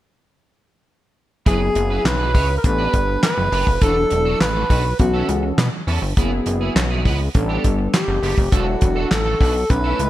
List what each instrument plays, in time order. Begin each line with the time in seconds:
1.46 analog synth bass F#1, analog polysynth F#3 B3 E4 G#4, clean electric guitar E4 G#4 B4, alto saxophone G#4, kick, closed hi-hat
1.61 muted clean electric guitar stroke
1.75 analog synth bass F#1, muted clean electric guitar stroke, closed hi-hat
1.90 clean electric guitar E4 G#4 B4
2.05 analog synth bass B1, alto saxophone B4, muted clean electric guitar stroke, snare, clap, closed hi-hat
2.20 clean electric guitar E4 G#4 B4
2.34 analog synth bass C#2, clean electric guitar E4 G#4 C#5, kick, open hi-hat
2.49 muted clean electric guitar stroke
2.58 alto saxophone A#4
2.64 analog synth bass A1, analog polysynth G3 B3 D4 A4, alto saxophone B4, muted clean electric guitar stroke, kick, closed hi-hat
2.78 clean electric guitar D4 G4 B4
2.93 analog synth bass G1, muted clean electric guitar stroke, kick, closed hi-hat
3.08 muted clean electric guitar stroke
3.23 alto saxophone B4, snare, clap, closed hi-hat
3.37 analog synth bass F#1, muted clean electric guitar stroke
3.52 analog synth bass F#1, clean electric guitar D4 G4 B4, open hi-hat
3.67 analog synth bass F1, muted clean electric guitar stroke, kick
3.81 analog synth bass E1, analog polysynth F#3 D4 E4 A4, clean electric guitar D4 F#4 A4, alto saxophone A4, kick, closed hi-hat
3.96 muted clean electric guitar stroke
4.10 analog synth bass E1, muted clean electric guitar stroke, closed hi-hat
4.25 clean electric guitar D4 F#4 A4
4.41 analog synth bass A1, alto saxophone B4, snare, clap, closed hi-hat
4.55 clean electric guitar D4 F#4 A4
4.69 analog synth bass B1, clean electric guitar D4 F#4 B4, kick, open hi-hat
4.84 muted clean electric guitar stroke
4.99 analog synth bass B1, analog polysynth E3 B3 C#4 A4, alto saxophone F#4, muted clean electric guitar stroke, kick, closed hi-hat
5.14 clean electric guitar C#4 E4 A4
5.29 analog synth bass C#2, muted clean electric guitar stroke, closed hi-hat
5.43 muted clean electric guitar stroke
5.58 analog synth bass B2, snare, clap, closed hi-hat
5.73 muted clean electric guitar stroke
5.87 analog synth bass E2, clean electric guitar C#4 E4 A4, open hi-hat
6.02 analog synth bass G1, muted clean electric guitar stroke
6.17 analog synth bass F#1, analog polysynth F#3 A#3 E4 G#4, clean electric guitar B3 E4 G#4, kick, closed hi-hat
6.24 analog polysynth B3
6.32 muted clean electric guitar stroke
6.46 analog synth bass F#1, muted clean electric guitar stroke, closed hi-hat
6.61 clean electric guitar B3 E4 G#4
6.76 analog synth bass B1, muted clean electric guitar stroke, snare, clap, closed hi-hat
6.90 clean electric guitar B3 E4 G#4
7.05 analog synth bass C#2, clean electric guitar B3 E4 B4, kick, open hi-hat
7.20 muted clean electric guitar stroke
7.34 analog synth bass A1, analog polysynth G3 B3 D4 A4, muted clean electric guitar stroke, kick, closed hi-hat
7.49 clean electric guitar B3 D4 G4
7.64 analog synth bass G1, muted clean electric guitar stroke, kick, closed hi-hat
7.79 muted clean electric guitar stroke
7.93 alto saxophone G4, snare, clap, closed hi-hat
8.08 analog synth bass F#1, muted clean electric guitar stroke
8.23 analog synth bass F#1, clean electric guitar B3 D4 G4, open hi-hat
8.38 analog synth bass F1, muted clean electric guitar stroke, kick
8.52 analog synth bass E1, analog polysynth F#3 D4 E4 A4, clean electric guitar D4 F#4 A4, alto saxophone F#4, kick, closed hi-hat
8.67 muted clean electric guitar stroke
8.81 analog synth bass E1, muted clean electric guitar stroke, kick, closed hi-hat
8.96 clean electric guitar D4 F#4 A4
9.11 analog synth bass A1, alto saxophone A4, muted clean electric guitar stroke, snare, clap, closed hi-hat
9.25 clean electric guitar D4 F#4 A4
9.40 analog synth bass B1, clean electric guitar D4 F#4 B4, kick, open hi-hat
9.55 muted clean electric guitar stroke
9.69 analog synth bass B1, analog polysynth A3 C#4 E4 B4, alto saxophone B4, muted clean electric guitar stroke, kick, closed hi-hat
9.84 clean electric guitar C#4 E4 A4
9.99 analog synth bass C#2, muted clean electric guitar stroke, closed hi-hat